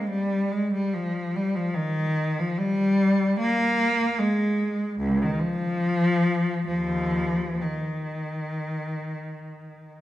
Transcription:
Already playing: G#3
0.09 G3
0.52 G#3
0.74 G3
0.94 F3
1.36 G3
1.55 F3
1.75 D#3
2.39 F3
2.59 G3
3.39 A#3
4.19 G#3
5.00 C#2
5.22 D#3
5.40 F3
6.67 D#2 F3
7.61 D#3

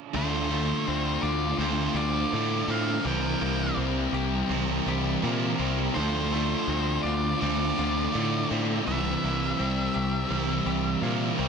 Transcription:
0.13 D2 D3 A3 D4 F4 A4 C5
0.50 A3 D4 F4 A4
0.86 D2 D3 A3 C4 D4
1.23 D2 F4 D5
1.58 D2 D3 C4 D4 F4 C5
1.62 A4
1.94 D2 A3 D4 F4 D5
2.32 A2 D3 A3 D4 F4 A4
2.68 A2 A3 C4 D4 F4 A4 F5
3.02 C2 C3 E3 G3 C4 E4 A#4
3.06 C4 G5
3.40 C2 G3 A#3 C4 E4 A#4
3.77 C2 C3 G3 C4
4.13 C2 G4
4.49 C2 C3 E3 G3 C4 E4 A#4
4.86 C2 G3 C4 G4
5.22 A#2 C3 G3 A#3 C4 E4 A#4
5.59 C2 G3 C4 E4 A#4
5.94 D2 D3 F3 A3 D4 F4 A4 C5
6.32 A3 D4 F4 A4
6.68 D2 D3 A3 C4 D4
7.03 D2 F4 D5
7.40 D2 D3 A3 C4 D4 F4 A4 D5
7.77 D2 A3 D4 F4
8.12 A2 D3 A3 D4 F4 A4
8.16 A3
8.49 A2 A3 C4 D4 F4 A4
8.85 C2 C3 E3 G3 C4 E4 E5
8.89 A#4
9.23 C2 G3 A#3 C4 E4 A#4
9.57 C2 C3 G3 C4
9.94 C2 G4
10.28 C2 C3 E3 G3 C4 E4 A#4
10.65 C2 G3 C4 G4
11.01 A#2 C3 G3 A#3 C4 E4 A#4
11.38 C2 G3 C4 E4 A#4

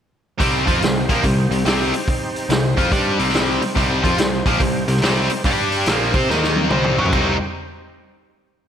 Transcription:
0.39 C2 C3 G3 C4 D#4 G4 C5, kick, open hi-hat
0.66 F2 F3 C4 F4, kick, open hi-hat
0.81 C2 C3 G3, snare, open hi-hat
1.09 A#1 A#2 F3 A#3, kick, open hi-hat
1.23 C2 C3 G3, kick, open hi-hat
1.50 C2 C3 G3, open hi-hat
1.65 C2 C3 G3 C4, snare, open hi-hat
1.94 open hi-hat
2.08 kick, open hi-hat
2.36 open hi-hat
2.49 C2 C3 G3, snare, open hi-hat
2.77 F2 F3 C4 F4, kick, open hi-hat
2.92 G2 G3 D4 G4, kick, open hi-hat
3.19 C2 C3 G3 C4, open hi-hat
3.28 snare
3.34 snare, open hi-hat
3.62 muted distorted electric guitar stroke, muted picked electric bass stroke, open hi-hat
3.75 C2 C3 G3 C4 D#4 G4 C5, kick, open hi-hat
4.03 F2 F3 C4 F4, kick, open hi-hat
4.17 C2 C3 G3, snare, open hi-hat
4.46 A#1 A#2 F3 A#3, kick, open hi-hat
4.60 C2 C3 G3, kick, open hi-hat
4.88 C2 C3 G3, open hi-hat
4.96 snare
5.02 C2 C3 G3 C4, snare, open hi-hat
5.30 open hi-hat
5.44 G2 G3 D4 G4 D5, kick, open hi-hat
5.72 open hi-hat
5.86 A#1 A#2 F3 A#3 C4 D#4 G4 C5, snare, open hi-hat
6.14 C3 C4 G4 C5, kick, open hi-hat
6.29 D#2 D#3 A#3 D#4 A#4 D#5, snare
6.44 snare
6.56 high tom
6.64 high tom
6.70 C2 C3 G3 C4 D#4 G4 C5, mid tom
6.84 mid tom
6.98 F#2 F#3 C#4 F#4, floor tom
7.05 floor tom
7.12 C2 C3 G3 C4 D#4 G4 C5, kick, crash

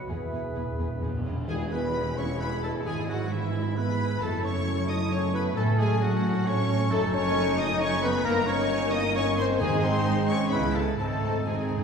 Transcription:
Already playing: B2 F#3 B3 F#4 B4
0.09 E1 E2 E3 B3 G#4 B4 E5
0.18 E2
0.25 E2
0.32 E1 E2 B3 G#4 B4
0.40 E2
0.49 E2
0.55 E1 E2 B3 G#4 B4
0.63 E2
0.72 E2
0.78 E1 E2 B3 G#4 B4
0.87 E2
0.95 E2
1.01 E1 E2 B3 G#4 B4
1.11 E2
1.18 E2
1.24 E1 E2 B3 G#4 B4
1.34 E2
1.47 E1 E2 E3 G#3 E4 G#4 G#5, tam-tam
1.60 E4
1.71 B3 G#4 B4 B5
1.83 B4
1.94 G#4
2.06 G#5
2.17 C#4 C#5 B5 C#6
2.29 G#5
2.40 B3 B4 B5
2.52 G#4
2.63 A3 B3 A4 A5
2.75 E4
2.86 G#1 G#2 G#3 G#4 G#5
2.99 G#3
3.08 F#3 E4 F#4 F#5
3.21 B4
3.31 E3 E4 E5
3.44 E5
3.55 B5
3.66 E5
3.76 B3 B4 B5
3.89 E4
4.00 B3
4.11 G#3
4.21 F#1 F#2 A3 E4 A4 A5
4.33 C#3
4.44 C#4 E4 C#5 C#6
4.56 C#5
4.66 A4
4.78 E5
4.88 D#4 D#5 C#6 D#6
5.00 E5
5.11 C#4 C#5 C#6
5.23 E4
5.34 A3 B3 B4 B5
5.45 C#3
5.56 A1 A2 A3 C#4 A4 A5
5.68 F#3
5.79 G#3 F#4 G#4 G#5
5.90 C#5
6.00 F#3 F#4 A4 F#5
6.24 C#6
6.46 C#4 C#5 C#6
6.58 F#4
6.69 A3
6.80 F#3
6.90 F#1 F#2 A3 D#4 A4 A5
7.03 C#3
7.12 C#4 D#4 C#5 C#6
7.36 A4
7.48 D#5
7.57 D#4 D#5 D#6
7.69 D#5
7.79 C#4 D#4 C#5 C#6
7.92 A3
8.02 C#3 B3 B4 B5
8.14 A3
8.25 G1 G2 A#3 A#4 A#5
8.37 G3
8.46 C#4 D#4 C#5 C#6
8.59 D#5
8.70 A#4
8.81 D#5
8.92 D#4 D#5 D#6
9.04 D#5
9.14 C#4 D#4 C#5 C#6
9.26 A#3
9.37 G3 C4 C5 C6
9.49 A#3
9.58 G#1 G#2 G#3 D#4 G#4 G#5
9.71 D#3
9.81 C4 D#4 C5 C6
10.04 G#4
10.16 D#5
10.27 C#4 C#5 C#6 D#6
10.39 D#5
10.50 C#2 C#3 G#3 B3 E4 B4 B5
10.62 C#4
10.73 A3 E4 A4 A5
10.86 C#5
10.97 G#1 G#2 A3 C4 D#4 A4 A5
11.07 G#2 D#3
11.15 G#2
11.21 G#2 D#4
11.30 G#2 D#5
11.39 G#2
11.45 G#2 G#3 C4 D#4 G#4 C5 G#5
11.54 G#2
11.62 G#2
11.69 G#2 D#6
11.78 G#2

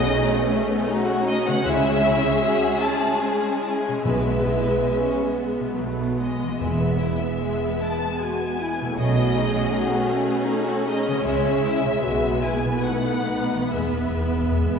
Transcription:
Already playing: B2 A3 B3 C#4 F#4 G#4 B4 C#5 D#5
0.15 D#4
0.34 B3
0.52 A3
0.71 B3
0.88 D#4 F#4
1.07 F#4
1.26 D#4 D#5
1.46 C#3 B3 F#5
1.52 G#3
1.57 G#4
1.61 C#2 G#3 E4 G#4 C#5
1.65 C#3 E5
1.84 C#4
2.03 E4 G#4
2.22 C#4
2.41 G#3 F#4
2.61 C#4
2.80 E4 A5
3.01 C#4
3.19 G#3 G#4 G#5
3.27 A5
3.36 G#5
3.41 C#4 A5
3.52 G#5
3.62 E4 A5
3.69 G#5
3.85 B2 C#4
3.92 B3
3.97 G#4
4.01 B2 B4 E5
4.05 B1 B2 G#3 B3 B4
4.28 B3
4.50 E4
4.72 B3
4.93 C#4
5.36 B3
5.60 B2
5.65 B3
5.69 F#4
5.74 A3 B4
5.78 B1 B2 F#3
6.19 G#3 D#5
6.43 E3
6.48 B3
6.52 G#4
6.57 E1 G#4 B4
6.61 E2 G#3 E5
6.81 B3
7.00 E4 G#4
7.20 B3
7.41 G#3
7.61 B3
7.81 E4 A5
8.01 B3
8.20 G#3 F#4 G#5
8.39 B3
8.59 E4
8.79 B2 B3
8.86 A3
8.90 G#4
8.94 A3 G#4 C#5
8.99 B1 B2 A3 C#4 F#4 D#5
9.18 B3
9.37 D#4 G#4
9.56 F#4
9.74 D#4 F#4
9.93 B3
10.11 A3
10.29 B3
10.48 D#4 A4
10.68 F#4
10.87 D#4 G#4 D#5
11.05 C#3 B3
11.11 G#3
11.16 G#4
11.21 C#2 G#3 C#5 E5
11.25 C#3 G#3
11.45 C#4
11.63 E4
11.83 B2 C#4
11.89 B3
11.93 G#4
11.97 E5
12.02 B1 B2 G#3 B3 F#4 B4
12.22 B3
12.41 E4 G#5
12.63 B2 B3
12.69 B3
12.74 A4
12.78 D#5 F#5
12.83 B1 B2 A3 D#4
13.05 B3
13.26 D#4
13.49 B3
13.55 E3
13.59 B3
13.64 G#4
13.68 G#3 E5
13.72 E1 E2 G#3 G#4 E5
13.82 E2
13.91 E2
13.96 E2 B3
14.08 E2
14.17 E2 E4
14.25 E2
14.34 E2
14.42 E2 B3
14.51 E2
14.60 E2
14.65 G#3

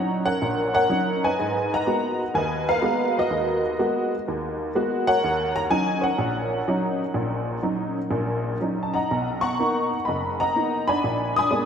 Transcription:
Already playing: F#3 C#4 D#4 C#5 F#5 A#5
0.25 A#4 C#5 F#5
0.42 A#1 A#2
0.74 A#4 C#5 F#5
0.89 F#3 C#4 D#4
1.24 B4 D#5 G#5
1.39 G#2
1.73 D#5 F#5 A#5
1.86 G#3 A#3 B3 F#4
2.34 D#2 B4 D#5 G#5
2.69 A#4 B4 F5
2.82 G#3 A#3 B3 F#4
3.18 F#4 B4 D#5
3.30 D#2
3.79 G#3 A#3 B3 F#4
4.28 D#2
4.75 G#3 A#3 B3 F#4
5.07 A#4 C#5 F#5
5.24 D#2
5.56 A#5
5.70 F#3 C#4 D#4 G#5
6.01 A#4 C#5 F#5
6.19 A#1
6.68 F#3 C#4 D#4
7.14 A#1 A#2
7.63 F#3 C#4 D#4
8.11 A#1 A#2
8.60 F#3 C#4 D#4
8.83 A5
8.94 D#5 F#5 A#5
9.11 B1
9.41 F#5 A#5 C#6
9.59 A#3 B3 D#4
10.05 F#1 D#5 F#5 B5
10.40 D#5 F#5 A#5
10.55 A#3 B3 D#4
10.87 D4 G#5 B5
11.04 A#1
11.36 G#5 B5 D#6
11.51 G#3 A#3 B3 D4

